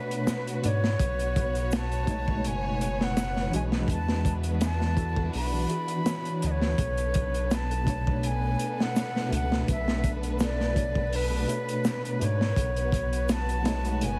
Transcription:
Already playing: B2 A3 B3 D4 F#4 B4 C#5
0.11 closed hi-hat
0.27 snare, closed hi-hat, shaker
0.47 closed hi-hat
0.62 G#2 B2 A3 D4 C#5 D5, closed hi-hat
0.84 snare
0.99 B1 B3 C#5, kick, closed hi-hat
1.19 closed hi-hat
1.36 kick, closed hi-hat
1.55 closed hi-hat
1.72 A5, snare, closed hi-hat, shaker
1.92 closed hi-hat
2.06 B2 A3 D#4, kick, closed hi-hat
2.10 G#3 C#5
2.28 kick
2.44 F#1 G#5, closed hi-hat
2.81 closed hi-hat
3.01 F#5, snare
3.17 snare, closed hi-hat, shaker
3.36 snare
3.50 B1 E3 D4 F#4, closed hi-hat
3.55 G#3 G#5
3.72 snare
3.88 E2 D4 E4 F#4, kick, closed hi-hat
3.92 A5
4.08 snare
4.25 kick, closed hi-hat
4.43 closed hi-hat
4.61 snare, closed hi-hat, shaker
4.65 A5
4.81 snare
4.96 E3 D4 F#4 A4, kick, closed hi-hat
5.16 kick
5.33 B1 B5, open hi-hat
5.52 E3 D4 F#4 B4
5.68 E3 D4 F#4 G#4, closed hi-hat
5.87 E3 D4 F#4 B4, closed hi-hat
6.04 E3 D4 F#4 C#5, snare, closed hi-hat, shaker
6.25 closed hi-hat
6.42 D2 D#5, closed hi-hat
6.51 C#5
6.62 snare
6.78 B1 B3 D4 A4 B4, kick, closed hi-hat
6.98 closed hi-hat
7.14 kick, closed hi-hat
7.34 closed hi-hat
7.51 A5, snare, closed hi-hat, shaker
7.71 closed hi-hat
7.84 B2 A3, kick, closed hi-hat
7.88 D4 C#5
8.07 kick
8.23 G#5, closed hi-hat
8.59 closed hi-hat
8.80 F#5, snare
8.96 snare, closed hi-hat, shaker
9.16 snare
9.28 C#2 B2 A3
9.32 D4 B4 F#5, closed hi-hat
9.52 snare
9.68 B1 E5, kick, closed hi-hat
9.88 snare
10.04 kick, closed hi-hat
10.23 closed hi-hat
10.39 D5, snare, closed hi-hat, shaker
10.60 snare
10.74 B2 A3 D4 C#5, kick, closed hi-hat
10.95 kick
11.13 B4, open hi-hat
11.30 B2 A3 D4 D5
11.47 B2 A3 D4 C#5, closed hi-hat
11.69 closed hi-hat
11.85 snare, closed hi-hat, shaker
12.05 closed hi-hat
12.19 G#2 B2 A3 D4 D5, closed hi-hat
12.24 C#5
12.41 snare
12.56 B1 B3 F#4, kick, closed hi-hat
12.76 closed hi-hat
12.92 kick, closed hi-hat
13.13 closed hi-hat
13.29 A5, snare, closed hi-hat, shaker
13.49 closed hi-hat
13.62 B2 A3 D#4, snare, closed hi-hat
13.66 G#3 C#5
13.85 closed hi-hat
14.01 F#1 G#5, closed hi-hat

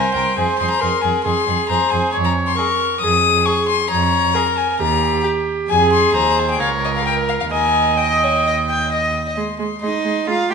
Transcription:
Already playing: A#4 C5 G#5
0.15 C2 A#4 G5
0.36 F2 G#4 C5 G#5
0.59 F2 G#4 C6
0.70 A#5
0.80 F2 G#4 A#4 C6
1.02 F2 G#4 G#5
1.24 F2 G#4 C6
1.47 F2 G#4
1.69 F2 G#4 C5 A#5
1.90 F2 G#4 G#5
2.12 F2 C#5 G#5
2.24 A#5
2.47 C6
2.56 G#4 A#4 C#6
3.01 F2 G#4 D#6
3.45 G#4 C#6
3.69 C6
3.90 F2 C#5 A#5
4.34 G#4 A#4
4.57 G#5
4.79 D#2 G4 A#5
5.24 G4
5.68 F2 G#4 G#5
5.93 C6
6.14 D#2 C5 A#5
6.39 G#5
6.51 G5
6.59 C#2 A#4 C#5 F5
6.85 D#5
6.96 F5
7.05 A#4 G5
7.29 F5
7.40 F5
7.51 D#2 A#4 D#5 G#5
7.98 D#5 G5
8.24 C#5
8.47 D#5
8.69 G5
8.93 D#5
9.28 D#5
9.37 G#3 C6
9.59 G#3 C6
9.81 G#3 D#4 D#5 C6
10.05 G#3 C6
10.27 G#3 F4 F5 A#5
10.50 G#3 G4 A#5

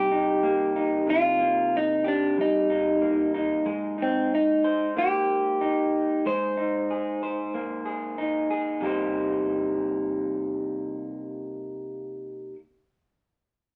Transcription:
Already playing: C3 G3 A#3 D#4 G4
0.11 D#4
0.43 A#3
0.76 D#4
1.07 C3 F4
1.39 A#3
1.77 D#4
2.04 D4 G4
2.38 G3 D#4
2.70 D#4
3.02 A#3
3.34 D#4
3.66 G#3
3.98 D#4
4.02 C4
4.35 D#4
4.64 C5
4.97 A#3 G4
5.61 D#4
6.26 G#3 C5
6.57 D#4
6.90 G#4
7.23 C5
7.54 A#3
7.86 G#4
8.18 D#4
8.51 G#4
8.81 C3 G3 A#3 D#4
8.86 G4 C5

